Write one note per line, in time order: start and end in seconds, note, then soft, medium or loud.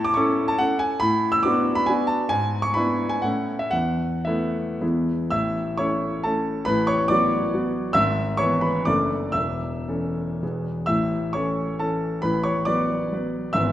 0.00 0.16 A2 medium
0.00 0.48 A5 loud
0.04 0.16 D6 loud
0.14 0.56 C#4 medium
0.14 0.56 E4 medium
0.14 0.57 A4 medium
0.14 0.48 C#6 medium
0.48 0.60 A5 loud
0.58 0.98 C#4 soft
0.58 0.98 E4 soft
0.58 0.98 A4 medium
0.58 0.81 F#5 loud
0.79 1.01 G#5 loud
1.00 1.44 A2 medium
1.00 1.33 B5 loud
1.32 1.44 E6 loud
1.43 1.85 B3 medium
1.43 1.85 D4 medium
1.43 1.85 F#4 medium
1.43 1.77 D6 loud
1.75 1.88 B5 loud
1.86 2.28 B3 medium
1.86 2.28 D4 medium
1.86 2.28 F#4 medium
1.86 2.09 G#5 loud
2.07 2.30 A5 loud
2.29 2.75 G#2 medium
2.29 2.64 G#5 loud
2.62 2.76 C#6 loud
2.74 3.20 B3 medium
2.74 3.20 D4 medium
2.74 3.20 E4 medium
2.74 3.11 B5 loud
3.09 3.23 G#5 loud
3.22 3.72 A2 medium
3.22 3.69 A3 soft
3.22 3.70 C#4 soft
3.22 3.70 E4 medium
3.22 3.60 F#5 medium
3.59 3.73 E5 medium
3.71 4.26 E2 medium
3.71 4.26 F#5 loud
4.25 4.77 A3 medium
4.25 4.78 B3 medium
4.25 4.78 E4 medium
4.25 4.80 E5 medium
4.81 5.30 E2 medium
4.81 5.28 G#3 soft
4.81 5.28 B3 soft
4.81 5.28 E4 soft
5.30 6.62 A1 medium
5.30 6.62 A2 medium
5.30 5.75 E5 medium
5.30 5.78 E6 loud
5.78 6.21 A3 soft
5.78 6.22 C#4 soft
5.78 6.22 E4 medium
5.78 6.22 C#5 medium
5.78 6.24 C#6 medium
6.23 6.63 A3 soft
6.23 6.63 C#4 soft
6.23 6.63 E4 soft
6.23 6.63 A4 medium
6.23 6.66 A5 medium
6.65 7.91 A1 medium
6.65 7.91 A2 medium
6.65 6.85 B4 medium
6.65 6.86 B5 loud
6.87 7.08 C#5 medium
6.87 7.09 C#6 loud
7.08 7.50 F#3 soft
7.08 7.50 B3 medium
7.08 7.50 F#4 medium
7.08 7.91 D5 medium
7.08 7.94 D6 loud
7.54 7.91 F#3 soft
7.54 7.91 B3 medium
7.54 7.91 F#4 medium
7.93 8.85 G#1 medium
7.93 8.85 G#2 medium
7.93 8.36 E5 loud
7.93 8.39 E6 loud
8.37 8.84 E3 medium
8.37 8.84 B3 medium
8.37 8.61 B4 medium
8.37 8.62 C#5 medium
8.37 8.63 C#6 loud
8.61 8.85 B4 medium
8.61 8.86 B5 medium
8.85 9.34 F#1 medium
8.85 9.34 F#2 medium
8.85 9.32 A3 soft
8.85 9.32 D4 soft
8.85 9.32 A4 soft
8.85 9.32 D5 medium
8.85 9.34 D6 medium
9.32 10.38 E1 medium
9.32 10.38 E2 medium
9.32 10.61 E5 medium
9.32 10.64 E6 medium
9.88 10.38 E3 soft
9.88 10.38 C#4 soft
9.88 10.38 A4 soft
10.42 10.88 E1 soft
10.42 10.87 E2 soft
10.42 10.85 E3 soft
10.42 10.85 B3 soft
10.42 10.85 G#4 soft
10.86 12.19 A1 medium
10.86 12.19 A2 medium
10.86 11.30 E5 medium
10.86 11.33 E6 medium
11.33 11.77 E3 soft
11.33 11.77 C#4 soft
11.33 11.77 A4 soft
11.33 11.77 C#5 medium
11.33 11.80 C#6 medium
11.79 12.20 E3 soft
11.79 12.20 C#4 soft
11.79 12.20 A4 medium
11.79 12.23 A5 medium
12.22 13.51 A1 medium
12.22 13.51 A2 medium
12.22 12.43 B4 medium
12.22 12.44 B5 medium
12.44 12.66 C#5 medium
12.44 12.67 C#6 medium
12.65 13.08 F#3 soft
12.65 13.09 B3 soft
12.65 13.09 B4 medium
12.65 13.50 D5 medium
12.65 13.54 D6 loud
13.12 13.51 F#3 soft
13.12 13.51 B3 soft
13.12 13.51 B4 soft
13.53 13.72 G#1 medium
13.53 13.72 G#2 medium
13.53 13.72 E3 soft
13.53 13.72 B3 soft
13.53 13.72 B4 soft
13.53 13.72 E5 medium
13.53 13.72 E6 loud